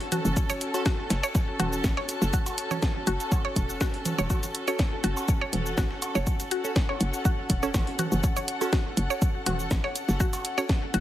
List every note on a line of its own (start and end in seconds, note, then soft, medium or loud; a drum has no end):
0.00 11.00 C#4 medium
0.00 11.00 F#4 medium
0.00 11.00 A4 medium
0.00 5.21 A5 medium
0.00 closed hi-hat soft
0.12 0.17 F#4 medium
0.12 closed hi-hat medium
0.12 low conga medium
0.12 cabasa soft
0.12 shaker medium
0.25 0.35 F#1 medium
0.25 low bongo medium
0.25 low conga medium
0.25 cabasa soft
0.37 kick loud
0.37 cabasa medium
0.37 shaker medium
0.50 0.52 C#5 loud
0.50 closed hi-hat soft
0.50 cabasa medium
0.61 closed hi-hat medium
0.61 shaker medium
0.74 0.85 C#4 medium
0.74 0.85 F#4 medium
0.74 0.85 A4 loud
0.74 closed hi-hat soft
0.74 cowbell medium
0.74 cabasa soft
0.86 0.91 F#4 medium
0.86 kick loud
0.86 snare loud
0.86 snare medium
0.86 shaker medium
1.10 1.21 F#1 loud
1.10 snare loud
1.10 closed hi-hat medium
1.10 shaker medium
1.23 1.26 C#5 loud
1.23 cabasa soft
1.35 kick loud
1.35 snare loud
1.35 cabasa medium
1.35 shaker medium
1.59 1.80 E1 medium
1.59 1.65 F#4 medium
1.59 closed hi-hat medium
1.59 cowbell medium
1.59 low conga medium
1.59 shaker medium
1.73 cabasa soft
1.84 1.95 A1 loud
1.84 kick loud
1.84 snare loud
1.84 snare medium
1.84 cabasa medium
1.84 shaker medium
1.97 2.00 C#5 loud
1.97 snare medium
2.09 closed hi-hat medium
2.09 cabasa medium
2.09 shaker medium
2.22 2.31 F#1 medium
2.22 snare medium
2.22 low bongo medium
2.22 cabasa soft
2.33 2.38 F#4 medium
2.33 kick loud
2.33 cabasa medium
2.33 shaker medium
2.46 closed hi-hat soft
2.46 cowbell medium
2.46 cabasa medium
2.58 closed hi-hat medium
2.58 shaker medium
2.71 2.77 C#4 medium
2.71 2.77 F#4 medium
2.71 2.77 A4 medium
2.71 2.74 C#5 loud
2.71 low conga medium
2.71 cabasa soft
2.82 kick loud
2.82 snare loud
2.82 snare medium
2.82 shaker medium
3.07 3.18 F#1 loud
3.07 3.12 F#4 medium
3.07 closed hi-hat medium
3.07 cabasa soft
3.07 shaker medium
3.20 closed hi-hat soft
3.20 cabasa soft
3.32 kick loud
3.32 cowbell medium
3.32 cabasa medium
3.32 shaker medium
3.45 3.47 C#5 loud
3.56 3.77 E1 medium
3.56 kick medium
3.56 closed hi-hat medium
3.56 cabasa soft
3.56 shaker medium
3.69 cabasa soft
3.81 3.86 F#4 medium
3.81 kick loud
3.81 snare loud
3.81 snare medium
3.81 cabasa medium
3.81 shaker medium
3.94 closed hi-hat soft
4.05 closed hi-hat medium
4.05 low conga loud
4.05 cabasa medium
4.05 shaker medium
4.18 4.28 E1 medium
4.18 4.21 C#5 loud
4.18 cowbell medium
4.18 low bongo medium
4.18 low conga medium
4.18 cabasa soft
4.30 4.35 F#4 medium
4.30 kick loud
4.30 cowbell medium
4.30 cabasa medium
4.30 shaker medium
4.43 closed hi-hat soft
4.43 cabasa medium
4.54 closed hi-hat medium
4.54 shaker medium
4.67 4.78 C#4 medium
4.67 4.78 F#4 medium
4.67 4.78 A4 loud
4.67 4.70 C#5 loud
4.67 closed hi-hat soft
4.67 cabasa soft
4.79 kick loud
4.79 snare loud
4.79 shaker medium
5.04 5.15 F#1 loud
5.04 5.09 F#4 medium
5.04 closed hi-hat medium
5.04 shaker medium
5.17 11.00 F#5 medium
5.17 cowbell medium
5.17 cabasa soft
5.28 kick loud
5.28 cabasa medium
5.28 shaker medium
5.41 5.44 C#5 loud
5.53 5.74 E1 medium
5.53 closed hi-hat medium
5.53 low conga loud
5.53 shaker medium
5.66 cabasa soft
5.78 5.88 A1 loud
5.78 5.83 F#4 medium
5.78 kick loud
5.78 snare loud
5.78 cabasa medium
5.78 shaker medium
5.91 snare medium
6.02 closed hi-hat medium
6.02 cowbell medium
6.02 cabasa medium
6.02 shaker medium
6.15 6.25 F#1 loud
6.15 6.18 C#5 loud
6.15 snare medium
6.15 low bongo medium
6.15 cabasa soft
6.27 kick loud
6.27 cabasa medium
6.27 shaker medium
6.40 closed hi-hat soft
6.40 cabasa medium
6.51 6.56 F#4 medium
6.51 closed hi-hat loud
6.51 shaker medium
6.64 6.71 C#4 medium
6.64 6.71 F#4 medium
6.64 6.71 A4 medium
6.64 cabasa soft
6.76 kick loud
6.76 snare loud
6.76 shaker medium
6.89 6.92 C#5 loud
6.89 cowbell medium
7.01 7.11 F#1 loud
7.01 closed hi-hat loud
7.01 shaker medium
7.14 cabasa soft
7.25 7.30 F#4 medium
7.25 kick loud
7.25 cabasa medium
7.25 shaker medium
7.50 7.71 E1 medium
7.50 kick medium
7.50 closed hi-hat medium
7.50 shaker medium
7.63 7.69 C#4 loud
7.63 7.69 F#4 loud
7.63 7.69 A4 loud
7.63 7.65 C#5 loud
7.63 cabasa soft
7.74 7.85 A1 loud
7.74 kick loud
7.74 snare loud
7.74 cowbell medium
7.74 cabasa medium
7.74 shaker medium
7.87 closed hi-hat soft
7.99 8.04 F#4 medium
7.99 closed hi-hat medium
7.99 low conga loud
7.99 cabasa soft
7.99 shaker medium
8.12 8.22 F#1 loud
8.12 low bongo medium
8.12 low conga loud
8.12 cabasa soft
8.23 kick loud
8.23 cabasa medium
8.23 shaker medium
8.36 8.39 C#5 loud
8.36 closed hi-hat soft
8.36 cabasa medium
8.48 closed hi-hat loud
8.48 shaker medium
8.61 8.71 C#4 loud
8.61 8.71 F#4 medium
8.61 8.71 A4 loud
8.61 closed hi-hat soft
8.61 cowbell medium
8.61 cabasa soft
8.73 8.78 F#4 medium
8.73 kick loud
8.73 snare loud
8.73 shaker medium
8.97 9.08 F#1 loud
8.97 closed hi-hat loud
8.97 shaker medium
9.10 9.13 C#5 loud
9.10 cabasa soft
9.22 kick loud
9.22 cabasa medium
9.22 shaker medium
9.46 9.67 E1 medium
9.46 9.51 F#4 medium
9.46 closed hi-hat loud
9.46 cowbell medium
9.46 low conga loud
9.46 shaker medium
9.59 cabasa soft
9.71 9.82 A1 loud
9.71 kick loud
9.71 snare loud
9.71 cabasa medium
9.71 shaker medium
9.84 9.87 C#5 loud
9.84 snare medium
9.96 closed hi-hat loud
9.96 cabasa soft
9.96 shaker medium
10.09 10.18 F#1 loud
10.09 snare medium
10.09 low bongo medium
10.09 cabasa soft
10.20 10.25 F#4 medium
10.20 kick loud
10.20 cabasa soft
10.20 shaker medium
10.33 closed hi-hat soft
10.33 cowbell medium
10.33 cabasa medium
10.45 closed hi-hat loud
10.45 shaker medium
10.58 10.64 C#4 medium
10.58 10.64 F#4 medium
10.58 10.64 A4 medium
10.58 10.60 C#5 loud
10.58 cabasa soft
10.69 kick loud
10.69 snare loud
10.69 snare medium
10.69 shaker medium
10.94 11.00 F#1 loud
10.94 10.99 F#4 medium
10.94 closed hi-hat medium
10.94 shaker medium